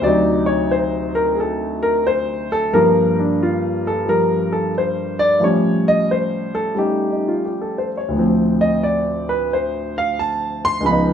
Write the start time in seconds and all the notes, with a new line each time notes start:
0.01 D2 C3 F#3 D5
0.07 D#4
0.46 C#5
0.71 C5
1.15 A#4
1.35 G#4
1.40 A4
1.83 A#4
2.07 C5
2.52 A4
2.73 G2 F3 A#3 A#4
3.19 D4
3.43 F4
3.87 A4
4.06 F3 G3 A#4
4.52 A4
4.78 C5
5.19 D5
5.40 A2 F3 G3
5.44 C#4 C#5
5.88 D#5
6.11 C5
6.55 A4
6.75 G3 A3 C#4 D#4 G4
7.12 D#4
7.28 F4
7.45 G4
7.61 A4
7.78 C5
7.97 C#5
8.08 D2 A2
8.15 F3 C4
8.61 D#5
8.84 D5
9.29 B4
9.53 C5
9.98 F5
10.19 A5
10.65 C6
10.80 C#2 C#3 F3
10.86 B3 B5
10.91 D#4